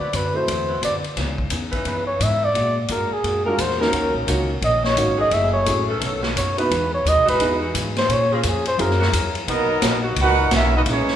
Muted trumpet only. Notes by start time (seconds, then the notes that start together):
Already playing: D5
0.16 B4
0.37 C5
0.85 D5
1.87 B4
2.07 C#5
2.23 E5
2.45 D5
2.91 A#4
3.13 G#4
3.46 A#4
3.61 C5
3.81 A#4
4.64 D#5
4.85 C#5
5.20 D#5
5.34 E5
5.53 C#5
6.38 C#5
6.59 B4
6.94 C#5
7.08 D#5
7.30 B4
7.98 C5
8.12 C#5
8.35 F4
8.48 G#4
8.68 C5
8.81 A#4